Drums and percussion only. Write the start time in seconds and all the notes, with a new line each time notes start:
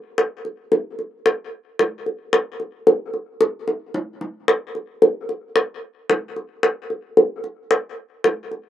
0.18 high bongo
0.45 high bongo
0.72 high bongo
0.99 high bongo
1.26 high bongo
1.79 high bongo, low bongo
2.06 high bongo
2.33 high bongo
2.60 high bongo
2.87 high bongo
3.14 high bongo
3.41 high bongo
3.68 high bongo
3.94 low bongo
4.21 low bongo
4.48 high bongo
4.75 high bongo
5.02 high bongo
5.29 high bongo
5.56 high bongo
6.10 high bongo, low bongo
6.36 high bongo
6.63 high bongo
6.90 high bongo
7.17 high bongo
7.44 high bongo
7.71 high bongo
8.24 high bongo, low bongo
8.51 high bongo